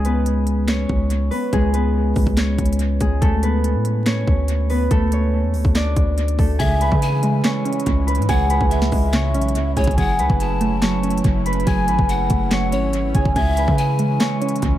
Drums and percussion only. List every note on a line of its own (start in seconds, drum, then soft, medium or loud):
0.05 closed hi-hat medium
0.26 closed hi-hat medium
0.47 closed hi-hat medium
0.68 snare loud
0.68 clap loud
0.68 closed hi-hat medium
0.89 kick loud
1.10 closed hi-hat medium
1.31 open hi-hat medium
1.53 kick loud
1.53 closed hi-hat medium
1.74 closed hi-hat medium
2.16 kick loud
2.16 open hi-hat medium
2.27 kick loud
2.37 snare loud
2.37 clap loud
2.37 closed hi-hat medium
2.58 kick loud
2.58 closed hi-hat medium
2.65 closed hi-hat medium
2.73 closed hi-hat medium
2.79 closed hi-hat medium
3.00 kick medium
3.00 closed hi-hat medium
3.22 kick loud
3.22 closed hi-hat medium
3.43 closed hi-hat medium
3.64 closed hi-hat medium
3.85 closed hi-hat medium
4.06 snare loud
4.06 clap loud
4.06 closed hi-hat medium
4.27 kick loud
4.48 closed hi-hat medium
4.70 open hi-hat medium
4.91 kick loud
4.91 closed hi-hat medium
5.12 closed hi-hat medium
5.54 open hi-hat medium
5.65 kick loud
5.75 snare loud
5.75 clap loud
5.75 closed hi-hat medium
5.96 kick loud
5.96 closed hi-hat medium
6.18 closed hi-hat medium
6.28 closed hi-hat medium
6.38 kick medium
6.38 open hi-hat medium
6.60 kick loud
6.60 closed hi-hat medium
6.81 closed hi-hat medium
6.92 kick medium
7.02 closed hi-hat medium
7.23 closed hi-hat medium
7.44 snare loud
7.44 clap loud
7.44 closed hi-hat medium
7.65 closed hi-hat medium
7.73 closed hi-hat medium
7.80 closed hi-hat medium
7.86 kick loud
7.86 closed hi-hat medium
8.08 closed hi-hat medium
8.15 closed hi-hat medium
8.22 closed hi-hat soft
8.29 kick loud
8.29 closed hi-hat medium
8.50 closed hi-hat medium
8.61 kick loud
8.71 closed hi-hat medium
8.82 snare medium
8.92 kick loud
8.92 open hi-hat medium
9.13 snare loud
9.13 clap loud
9.13 closed hi-hat medium
9.34 closed hi-hat medium
9.41 closed hi-hat medium
9.48 closed hi-hat medium
9.55 closed hi-hat medium
9.77 kick loud
9.77 closed hi-hat medium
9.77 open hi-hat medium
9.84 kick loud
9.84 closed hi-hat medium
9.91 closed hi-hat soft
9.98 kick loud
9.98 closed hi-hat medium
10.19 closed hi-hat medium
10.30 kick loud
10.40 closed hi-hat medium
10.61 closed hi-hat medium
10.82 snare loud
10.82 clap loud
10.82 closed hi-hat medium
11.03 closed hi-hat medium
11.10 closed hi-hat medium
11.18 closed hi-hat medium
11.24 kick medium
11.24 closed hi-hat medium
11.46 closed hi-hat medium
11.53 closed hi-hat medium
11.60 closed hi-hat soft
11.67 kick loud
11.67 closed hi-hat medium
11.88 closed hi-hat medium
11.99 kick medium
12.09 closed hi-hat medium
12.30 kick loud
12.30 closed hi-hat medium
12.51 snare loud
12.51 clap loud
12.51 closed hi-hat medium
12.72 closed hi-hat medium
12.93 closed hi-hat medium
13.15 kick loud
13.15 closed hi-hat medium
13.25 kick loud
13.36 kick loud
13.36 closed hi-hat medium
13.57 closed hi-hat medium
13.68 kick loud
13.78 closed hi-hat medium
13.99 closed hi-hat medium
14.20 snare loud
14.20 clap loud
14.20 closed hi-hat medium
14.42 closed hi-hat medium
14.49 closed hi-hat medium
14.56 closed hi-hat medium
14.62 kick medium
14.62 closed hi-hat medium